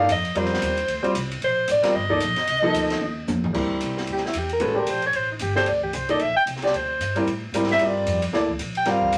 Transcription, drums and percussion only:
0.09 hi-hat pedal, ride
0.25 ride
0.35 ride
0.45 snare
0.53 snare
0.62 hi-hat pedal, ride
0.77 ride
0.88 ride
1.04 ride
1.15 hi-hat pedal, ride
1.31 ride
1.42 ride
1.68 hi-hat pedal, ride
1.83 snare, ride
2.10 kick
2.20 hi-hat pedal, ride
2.36 snare, ride
2.47 ride
2.74 hi-hat pedal, ride
2.90 snare, ride
3.01 high tom
3.28 hi-hat pedal, high tom
3.44 floor tom
3.54 kick, crash
3.80 hi-hat pedal, ride
3.97 snare
4.07 ride
4.17 snare
4.26 snare
4.33 hi-hat pedal, ride
4.49 ride
4.60 ride
4.87 hi-hat pedal, ride
5.02 ride
5.13 ride
5.39 hi-hat pedal, ride
5.56 snare
5.66 ride
5.82 kick
5.93 hi-hat pedal, ride
6.09 ride
6.20 ride
6.47 hi-hat pedal, ride
6.56 snare
6.62 snare, ride
6.74 ride
7.01 hi-hat pedal, ride
7.16 ride
7.27 ride
7.54 hi-hat pedal, ride
7.63 snare
7.69 snare, ride
7.79 ride
8.07 hi-hat pedal, ride
8.22 ride
8.33 snare
8.49 kick
8.59 hi-hat pedal, ride
8.75 ride
8.86 snare, ride
9.02 kick
9.12 hi-hat pedal, ride

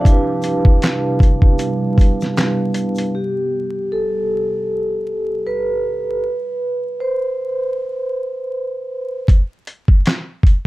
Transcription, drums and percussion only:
0.05 kick, closed hi-hat, shaker
0.42 closed hi-hat, shaker
0.65 kick
0.82 snare, clap, closed hi-hat, shaker
1.20 kick, closed hi-hat, shaker
1.42 kick
1.59 closed hi-hat, shaker
1.98 kick, closed hi-hat, shaker
2.21 snare, shaker
2.37 snare, clap, closed hi-hat, shaker
2.74 closed hi-hat, shaker
2.95 closed hi-hat, shaker
9.28 kick, closed hi-hat
9.67 closed hi-hat
9.88 kick
10.06 snare, clap, closed hi-hat
10.43 kick, closed hi-hat

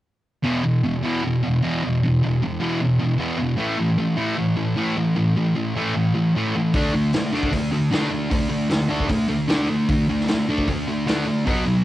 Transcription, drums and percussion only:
6.73 kick, open hi-hat
7.13 snare, open hi-hat
7.34 snare
7.43 kick
7.52 kick, open hi-hat
7.92 snare, open hi-hat
8.31 kick, open hi-hat
8.70 snare, open hi-hat
9.00 kick
9.09 kick, open hi-hat
9.48 snare, open hi-hat
9.89 kick, open hi-hat
10.20 snare
10.28 snare, open hi-hat
10.58 kick
10.67 kick, open hi-hat
11.08 snare, open hi-hat
11.47 kick, open hi-hat

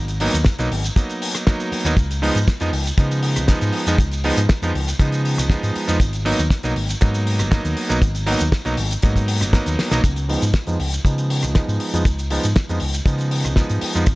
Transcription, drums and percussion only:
0.08 closed hi-hat, shaker
0.20 open hi-hat
0.34 closed hi-hat, shaker
0.45 kick, snare, closed hi-hat, shaker
0.59 closed hi-hat, shaker
0.72 open hi-hat
0.85 closed hi-hat, shaker
0.96 kick, closed hi-hat, shaker
1.09 closed hi-hat, shaker
1.22 open hi-hat
1.35 cross-stick, closed hi-hat, shaker
1.47 kick, snare, closed hi-hat, shaker
1.60 closed hi-hat, shaker
1.72 open hi-hat
1.85 closed hi-hat, shaker
1.97 kick, closed hi-hat, shaker
2.11 closed hi-hat, shaker
2.23 open hi-hat
2.35 closed hi-hat, shaker
2.48 kick, snare, closed hi-hat, shaker
2.60 closed hi-hat, shaker
2.73 open hi-hat
2.86 closed hi-hat, shaker
2.98 kick, closed hi-hat, shaker
3.11 closed hi-hat, shaker
3.23 open hi-hat
3.36 cross-stick, closed hi-hat, shaker
3.48 kick, snare, closed hi-hat, shaker
3.61 closed hi-hat, shaker
3.73 open hi-hat
3.87 closed hi-hat, shaker
3.98 kick, closed hi-hat, shaker
4.12 closed hi-hat, shaker
4.24 open hi-hat
4.37 closed hi-hat, shaker
4.49 kick, snare, closed hi-hat, shaker
4.63 closed hi-hat, shaker
4.75 open hi-hat
4.88 closed hi-hat, shaker
4.99 kick, closed hi-hat, shaker
5.12 closed hi-hat, shaker
5.25 open hi-hat
5.38 cross-stick, closed hi-hat, shaker
5.50 kick, snare, closed hi-hat, shaker
5.63 closed hi-hat, shaker
5.76 open hi-hat
5.89 closed hi-hat, shaker
6.00 kick, closed hi-hat, shaker
6.13 closed hi-hat, shaker
6.26 open hi-hat
6.39 closed hi-hat, shaker
6.50 kick, snare, closed hi-hat, shaker
6.63 closed hi-hat, shaker
6.76 open hi-hat
6.89 closed hi-hat, shaker
7.01 kick, closed hi-hat, shaker
7.14 closed hi-hat, shaker
7.27 open hi-hat
7.39 cross-stick, closed hi-hat, shaker
7.52 kick, snare, closed hi-hat, shaker
7.65 closed hi-hat, shaker
7.77 open hi-hat
7.90 closed hi-hat, shaker
8.02 kick, closed hi-hat, shaker
8.15 closed hi-hat, shaker
8.27 open hi-hat
8.40 closed hi-hat, shaker
8.52 kick, snare, closed hi-hat, shaker
8.65 closed hi-hat, shaker
8.77 open hi-hat
8.91 closed hi-hat, shaker
9.02 kick, closed hi-hat, shaker
9.16 kick, closed hi-hat, shaker
9.28 open hi-hat
9.41 cross-stick, closed hi-hat, shaker
9.53 kick, snare, closed hi-hat, shaker
9.66 closed hi-hat, shaker
9.79 snare, open hi-hat
9.91 snare, closed hi-hat, shaker
10.04 kick, closed hi-hat, shaker
10.16 closed hi-hat, shaker
10.29 open hi-hat
10.42 closed hi-hat, shaker
10.54 kick, snare, closed hi-hat, shaker
10.67 closed hi-hat, shaker
10.80 open hi-hat
10.92 closed hi-hat, shaker
11.05 kick, closed hi-hat, shaker
11.18 closed hi-hat, shaker
11.30 open hi-hat
11.43 cross-stick, closed hi-hat, shaker
11.55 kick, snare, closed hi-hat, shaker
11.69 closed hi-hat, shaker
11.80 open hi-hat
11.94 closed hi-hat, shaker
12.05 kick, closed hi-hat, shaker
12.19 closed hi-hat, shaker
12.30 open hi-hat
12.44 closed hi-hat, shaker
12.56 kick, snare, closed hi-hat, shaker
12.69 closed hi-hat, shaker
12.80 open hi-hat
12.94 closed hi-hat, shaker
13.06 kick, closed hi-hat, shaker
13.18 closed hi-hat, shaker
13.31 open hi-hat
13.44 cross-stick, closed hi-hat, shaker
13.56 kick, snare, closed hi-hat, shaker
13.69 closed hi-hat, shaker
13.81 open hi-hat
13.95 closed hi-hat, shaker
14.06 kick, closed hi-hat, shaker

